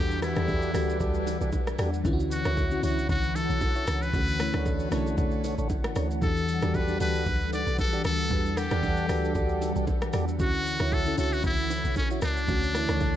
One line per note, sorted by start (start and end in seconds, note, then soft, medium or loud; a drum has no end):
0.00 0.34 E2 loud
0.00 0.21 E3 medium
0.00 2.01 E3 medium
0.00 2.01 G3 medium
0.00 0.22 D4 medium
0.00 2.01 D4 medium
0.00 0.22 F#4 medium
0.00 0.19 G4 loud
0.00 0.23 G4 medium
0.00 0.18 A4 medium
0.00 0.24 B4 medium
0.00 2.03 B4 medium
0.00 2.01 F#5 medium
0.00 downlifter medium
0.11 shaker medium
0.21 0.64 E3 medium
0.21 0.65 D4 medium
0.21 1.23 E4 loud
0.21 0.65 F#4 medium
0.21 0.66 G4 medium
0.21 0.66 B4 medium
0.21 cross-stick medium
0.21 open hi-hat medium
0.21 shaker medium
0.36 0.72 E2 medium
0.36 0.71 F#4 medium
0.36 0.72 G4 medium
0.36 0.72 A4 medium
0.36 0.72 D5 medium
0.36 cross-stick medium
0.36 high bongo medium
0.36 low bongo medium
0.36 shaker medium
0.48 kick medium
0.48 high bongo medium
0.48 low conga medium
0.48 shaker medium
0.62 shaker medium
0.73 0.99 D2 medium
0.73 1.58 E3 medium
0.73 1.58 D4 medium
0.73 0.98 F#4 medium
0.73 1.59 F#4 medium
0.73 0.99 G4 medium
0.73 1.59 G4 medium
0.73 0.99 A4 medium
0.73 1.59 A4 medium
0.73 0.99 D5 medium
0.73 cross-stick medium
0.73 open hi-hat medium
0.73 shaker loud
0.90 shaker medium
1.00 1.38 D2 loud
1.00 1.37 F#4 medium
1.00 1.38 G4 medium
1.00 1.38 A4 medium
1.00 1.38 D5 loud
1.00 kick loud
1.00 low conga medium
1.00 shaker medium
1.14 shaker soft
1.26 open hi-hat medium
1.26 low bongo medium
1.26 shaker medium
1.41 1.76 B1 medium
1.41 1.50 F#4 medium
1.41 1.51 G4 medium
1.41 1.51 A4 medium
1.41 1.51 D5 medium
1.41 shaker medium
1.53 kick medium
1.53 high bongo medium
1.53 low bongo medium
1.53 shaker medium
1.67 cross-stick medium
1.67 shaker medium
1.78 2.03 E2 medium
1.78 1.90 F#4 medium
1.78 1.90 G4 medium
1.78 1.91 A4 medium
1.78 1.91 D5 medium
1.78 cross-stick loud
1.78 open hi-hat soft
1.78 shaker medium
1.94 shaker medium
2.04 2.43 D2 loud
2.04 2.57 D3 medium
2.04 6.18 E3 medium
2.04 2.57 C#4 medium
2.04 4.12 E4 medium
2.04 2.58 E4 medium
2.04 2.13 F4 medium
2.04 6.18 C#5 medium
2.04 13.16 F#5 medium
2.04 kick loud
2.04 low conga medium
2.04 shaker medium
2.13 2.61 F#4 loud
2.20 shaker medium
2.31 2.80 F#4 medium
2.31 open hi-hat medium
2.31 shaker medium
2.45 2.81 D2 medium
2.45 2.80 E4 medium
2.45 2.80 F#4 medium
2.45 2.81 C#5 medium
2.45 cross-stick medium
2.45 high bongo medium
2.45 low bongo medium
2.45 shaker medium
2.57 kick medium
2.57 high bongo medium
2.57 low conga medium
2.57 shaker medium
2.70 2.80 D3 medium
2.70 2.81 C#4 medium
2.70 2.81 E4 medium
2.70 2.82 F#4 medium
2.70 shaker soft
2.82 3.08 C#2 medium
2.82 3.67 C#4 medium
2.82 3.67 D4 medium
2.82 3.07 E4 medium
2.82 3.67 E4 medium
2.82 3.07 F#4 medium
2.82 3.08 F#4 medium
2.82 3.68 F#4 medium
2.82 3.08 C#5 medium
2.82 open hi-hat medium
2.82 shaker medium
2.98 shaker medium
3.09 3.47 C#2 loud
3.09 3.37 F#4 loud
3.09 kick loud
3.09 low conga medium
3.09 shaker medium
3.23 shaker soft
3.35 4.04 A4 loud
3.35 open hi-hat medium
3.35 low bongo medium
3.35 shaker medium
3.50 3.85 B1 medium
3.50 shaker medium
3.61 kick medium
3.61 high bongo medium
3.61 low bongo medium
3.61 shaker medium
3.75 3.85 E4 medium
3.75 3.85 F#4 medium
3.75 3.85 C#5 medium
3.75 shaker medium
3.87 4.12 C#2 loud
3.87 cross-stick loud
3.87 open hi-hat soft
3.87 shaker medium
4.02 5.06 B4 loud
4.02 shaker medium
4.12 4.51 D2 loud
4.12 4.34 D3 medium
4.12 4.35 A3 medium
4.12 6.20 A3 medium
4.12 4.35 C#4 medium
4.12 4.36 F#4 medium
4.12 kick loud
4.12 low conga medium
4.12 shaker medium
4.28 shaker medium
4.38 4.82 D3 medium
4.38 4.82 A3 medium
4.38 4.83 C#4 medium
4.38 4.83 E4 medium
4.38 cross-stick medium
4.38 open hi-hat medium
4.38 shaker loud
4.53 4.89 D2 loud
4.53 4.89 D4 medium
4.53 4.89 A4 medium
4.53 4.89 C#5 medium
4.53 cross-stick medium
4.53 high bongo medium
4.53 low bongo medium
4.53 shaker medium
4.66 kick medium
4.66 high bongo medium
4.66 low conga medium
4.66 shaker medium
4.79 shaker soft
4.91 5.16 B1 medium
4.91 5.75 D3 medium
4.91 5.76 A3 medium
4.91 5.76 C#4 medium
4.91 5.16 D4 medium
4.91 5.77 E4 medium
4.91 5.16 A4 medium
4.91 5.16 C#5 medium
4.91 cross-stick medium
4.91 open hi-hat medium
4.91 shaker medium
5.06 high bongo medium
5.06 shaker medium
5.17 5.56 B1 loud
5.17 5.55 D4 medium
5.17 5.55 A4 medium
5.17 5.55 C#5 loud
5.17 kick loud
5.17 low conga medium
5.17 shaker medium
5.31 shaker soft
5.44 open hi-hat medium
5.44 low bongo medium
5.44 shaker medium
5.58 5.94 A1 medium
5.58 5.68 D4 medium
5.58 5.68 A4 medium
5.58 5.68 C#5 medium
5.58 shaker medium
5.70 kick medium
5.70 high bongo medium
5.70 low bongo medium
5.70 shaker medium
5.84 cross-stick loud
5.84 shaker medium
5.96 6.21 D2 loud
5.96 6.08 D4 medium
5.96 6.08 A4 medium
5.96 6.08 C#5 medium
5.96 cross-stick medium
5.96 open hi-hat medium
5.96 shaker medium
6.11 shaker medium
6.21 6.60 E2 loud
6.21 6.74 E3 medium
6.21 10.36 E3 medium
6.21 10.36 G3 medium
6.21 6.74 D4 medium
6.21 10.36 D4 medium
6.21 6.74 F#4 medium
6.21 6.75 G4 medium
6.21 10.36 A4 medium
6.21 6.77 A4 loud
6.21 6.75 A4 medium
6.21 kick loud
6.21 low conga medium
6.21 shaker medium
6.37 shaker medium
6.49 open hi-hat medium
6.49 shaker medium
6.62 6.98 E2 medium
6.62 6.98 F#4 medium
6.62 6.98 G4 medium
6.62 6.98 A4 medium
6.62 6.98 D5 medium
6.62 cross-stick medium
6.62 high bongo medium
6.62 low bongo medium
6.62 shaker medium
6.74 7.00 B4 loud
6.74 kick medium
6.74 high bongo medium
6.74 low conga medium
6.74 shaker medium
6.87 6.98 E3 medium
6.87 6.98 D4 medium
6.87 6.98 F#4 medium
6.87 6.99 G4 medium
6.87 6.99 A4 medium
6.87 shaker soft
6.99 7.25 D2 medium
6.99 7.84 E3 medium
6.99 7.84 D4 medium
6.99 7.25 F#4 medium
6.99 7.85 F#4 medium
6.99 7.25 G4 medium
6.99 7.85 G4 medium
6.99 7.25 A4 medium
6.99 7.49 B4 loud
6.99 7.85 B4 medium
6.99 7.25 D5 medium
6.99 open hi-hat medium
6.99 shaker loud
7.16 shaker medium
7.26 7.64 D2 loud
7.26 kick loud
7.26 low conga medium
7.26 shaker medium
7.40 shaker soft
7.53 7.77 D5 loud
7.53 open hi-hat medium
7.53 low bongo medium
7.53 shaker medium
7.67 8.02 B1 medium
7.67 shaker medium
7.78 8.03 A4 loud
7.78 kick medium
7.78 high bongo medium
7.78 low bongo medium
7.78 shaker medium
7.93 8.03 F#4 medium
7.93 8.03 G4 medium
7.93 8.03 A4 medium
7.93 8.03 D5 medium
7.93 shaker medium
8.04 8.29 D2 medium
8.04 8.59 A4 loud
8.04 cross-stick loud
8.04 open hi-hat soft
8.04 shaker medium
8.20 shaker medium
8.29 8.69 E2 loud
8.29 8.52 E3 medium
8.29 8.52 D4 medium
8.29 8.52 F#4 medium
8.29 8.53 G4 medium
8.29 8.53 B4 medium
8.29 kick loud
8.29 low conga medium
8.29 shaker medium
8.46 shaker medium
8.56 8.99 E3 medium
8.56 9.00 D4 medium
8.56 9.62 G4 medium
8.56 9.00 G4 medium
8.56 9.01 A4 medium
8.56 9.00 F#5 medium
8.56 cross-stick medium
8.56 open hi-hat medium
8.56 shaker medium
8.71 9.07 E2 medium
8.71 9.06 G4 medium
8.71 9.06 A4 medium
8.71 9.07 D5 medium
8.71 9.06 F#5 medium
8.71 cross-stick medium
8.71 high bongo medium
8.71 low bongo medium
8.71 shaker medium
8.83 kick medium
8.83 high bongo medium
8.83 low conga medium
8.83 shaker medium
8.97 shaker soft
9.08 9.34 D2 medium
9.08 9.93 E3 medium
9.08 9.93 D4 medium
9.08 9.33 F#4 medium
9.08 9.33 G4 medium
9.08 9.94 G4 medium
9.08 9.34 A4 medium
9.08 9.94 B4 medium
9.08 9.34 D5 medium
9.08 9.93 F#5 medium
9.08 cross-stick medium
9.08 open hi-hat medium
9.08 shaker loud
9.24 shaker medium
9.35 9.73 D2 loud
9.35 9.72 F#4 medium
9.35 9.72 G4 medium
9.35 9.72 A4 medium
9.35 9.73 D5 loud
9.35 kick loud
9.35 low conga medium
9.35 shaker medium
9.49 shaker soft
9.61 open hi-hat medium
9.61 low bongo medium
9.61 shaker medium
9.76 10.11 B1 medium
9.76 9.85 F#4 medium
9.76 9.85 G4 medium
9.76 9.85 A4 medium
9.76 9.86 D5 medium
9.76 shaker medium
9.87 kick medium
9.87 high bongo medium
9.87 low bongo medium
9.87 shaker medium
10.02 cross-stick loud
10.02 shaker medium
10.13 10.41 E2 medium
10.13 10.25 F#4 medium
10.13 10.25 G4 medium
10.13 10.25 A4 medium
10.13 10.25 D5 medium
10.13 cross-stick loud
10.13 open hi-hat medium
10.13 shaker medium
10.28 shaker medium
10.38 10.77 D2 loud
10.38 10.91 D3 medium
10.38 13.16 E3 medium
10.38 10.92 C#4 medium
10.38 12.46 E4 medium
10.38 10.92 E4 medium
10.38 10.95 F#4 loud
10.38 10.93 F#4 medium
10.38 12.46 C#5 medium
10.38 kick loud
10.38 low conga medium
10.38 shaker medium
10.54 shaker medium
10.66 open hi-hat medium
10.66 shaker medium
10.80 11.16 D2 loud
10.80 11.15 E4 medium
10.80 11.15 F#4 medium
10.80 11.15 C#5 medium
10.80 cross-stick medium
10.80 high bongo medium
10.80 low bongo medium
10.80 shaker medium
10.92 11.19 A4 loud
10.92 kick medium
10.92 high bongo medium
10.92 low conga medium
10.92 shaker medium
11.05 11.15 D3 medium
11.05 11.15 C#4 medium
11.05 11.16 E4 medium
11.05 11.16 A4 medium
11.05 shaker soft
11.17 11.42 C#2 medium
11.17 12.02 C#4 medium
11.17 12.01 D4 medium
11.17 11.42 E4 medium
11.17 12.02 E4 medium
11.17 11.42 F#4 medium
11.17 12.03 F#4 medium
11.17 11.35 A4 loud
11.17 11.42 C#5 medium
11.17 open hi-hat medium
11.17 shaker medium
11.33 11.44 F#4 medium
11.33 shaker medium
11.44 11.82 C#2 loud
11.44 11.93 E4 loud
11.44 kick loud
11.44 low conga medium
11.44 shaker medium
11.58 shaker soft
11.70 open hi-hat medium
11.70 low bongo medium
11.70 shaker medium
11.85 12.20 B1 medium
11.85 shaker medium
11.96 12.09 C#4 medium
11.96 kick medium
11.96 high bongo medium
11.96 low bongo medium
11.96 shaker medium
12.10 12.20 E4 medium
12.10 12.20 F#4 medium
12.10 12.20 C#5 medium
12.10 shaker medium
12.22 12.47 C#2 medium
12.22 13.16 D4 loud
12.22 cross-stick loud
12.22 open hi-hat medium
12.22 shaker medium
12.37 shaker medium
12.47 12.86 D2 loud
12.47 12.69 D3 medium
12.47 12.70 A3 medium
12.47 13.16 A3 medium
12.47 12.70 C#4 medium
12.47 12.71 F#4 medium
12.47 13.16 C#5 medium
12.47 kick loud
12.47 low conga medium
12.47 shaker medium
12.63 shaker medium
12.73 13.16 D3 medium
12.73 13.16 A3 medium
12.73 13.16 E4 medium
12.73 13.16 C#5 medium
12.73 cross-stick medium
12.73 open hi-hat medium
12.73 shaker medium
12.88 13.16 D2 loud
12.88 13.16 D4 medium
12.88 13.16 A4 medium
12.88 13.16 C#5 medium
12.88 cross-stick medium
12.88 high bongo medium
12.88 low bongo medium
12.88 shaker medium
13.01 kick loud
13.01 high bongo medium
13.01 low conga medium
13.01 shaker medium